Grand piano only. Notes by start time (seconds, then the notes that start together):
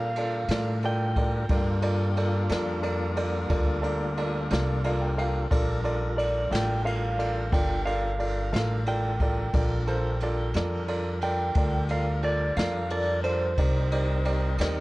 0.17 F4 A4 A#4 D5
0.50 F4 A4 A#4 D5
0.84 F4 A4 A#4 D5
1.16 F4 A4 A#4 D5
1.50 F4 A4 A#4 D5
1.82 F4 A4 A#4 D5
2.17 F4 A4 A#4 D5
2.50 F4 A4 A#4 D5
2.83 F4 A4 A#4 D5
3.15 F4 A4 A#4 D5
3.50 F4 A4 A#4 D5
3.82 F4 A4 A#4 D5
4.17 F4 A4 A#4 D5
4.51 F4 A4 A#4 D5
4.84 F4 A4 A#4 D5 F5
5.01 G5
5.17 F4 A4 A#4 F5 G5
5.51 F4 A4 A#4 D5
5.84 F4 A4 A#4 D5
6.16 F4 A4 A#4 D5
6.50 F4 A4 A#4 D5
6.84 F4 A4 A#4 F5
7.18 F4 A4 A#4 D5
7.53 F4 A4 A#4 D5
7.86 F4 A4 A#4 D5
8.19 F4 A4 A#4 D5
8.53 F4 A4 A#4 F5
8.87 F4 A4 A#4 D5
9.20 F4 A4 A#4 D5
9.53 F4 A4 A#4 D5
9.87 F4 A4 A#4 C5
10.22 F4 A4 A#4 D5
10.55 F4 A4 A#4 D5
10.88 F4 A4 A#4 D5
11.23 F4 A4 A#4 D5
11.56 F4 A4 A#4 D5
11.90 F4 A4 A#4 D5
12.23 F4 A4 A#4 D5
12.58 F4 A4 A#4 D5
12.91 F4 A4 A#4 D5
13.24 F4 A4 A#4 D5
13.58 D#4 G4 A#4 D5
13.92 D#4 G4 A#4 D5
14.25 D#4 G4 A#4 D5
14.60 D#4 G4 A#4 D5